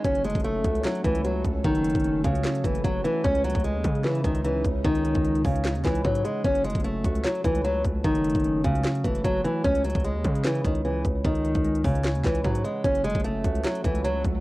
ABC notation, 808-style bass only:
X:1
M:4/4
L:1/16
Q:1/4=150
K:F#dor
V:1 name="808-style bass" clef=bass
F,,,3 F,,,3 C,,2 z2 C,,4 C,,2 | F,,,3 F,,,3 C,,2 z2 F,,,2 F,,,2 z2 | C,,3 C,,2 D,, C,4 C,,4 C,,2 | C,,3 C,,3 C,,3 D,, C,,2 G,,2 z2 |
F,,,3 F,,,3 C,,2 z2 C,,4 C,,2 | F,,,3 F,,,3 C,,2 z2 F,,,2 F,,,2 z2 | C,,3 C,,2 D,, C,4 C,,4 C,,2 | C,,3 C,,3 C,,3 D,, C,,2 G,,2 z2 |
F,,,3 F,,,3 C,,2 z2 C,,4 C,,2 |]